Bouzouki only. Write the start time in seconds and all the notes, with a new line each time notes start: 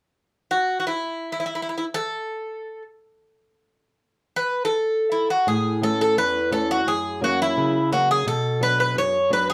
0.51 F#4
0.80 F#4
0.87 E4
1.32 E4
1.40 E4
1.46 E4
1.55 E4
1.62 E4
1.69 E4
1.78 E4
1.94 A4
4.36 B4
4.65 A4
5.12 E4
5.30 F#4
5.48 G#4
5.83 A4
6.01 A4
6.18 B4
6.52 A4
6.71 F#4
6.88 G#4
7.24 F#4
7.42 E4
7.93 F#4
8.11 G#4
8.28 A4
8.63 B4
8.80 B4
8.98 C#5
9.33 B4
9.50 G#4